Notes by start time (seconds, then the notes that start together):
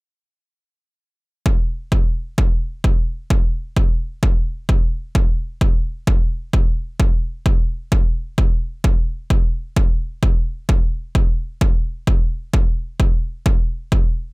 1.46 kick
1.92 kick
2.38 kick
2.84 kick
3.30 kick
3.77 kick
4.23 kick
4.69 kick
5.15 kick
5.61 kick
6.07 kick
6.53 kick
7.00 kick
7.46 kick
7.92 kick
8.38 kick
8.84 kick
9.30 kick
9.76 kick
10.23 kick
10.69 kick
11.15 kick
11.61 kick
12.07 kick
12.53 kick
13.00 kick
13.46 kick
13.92 kick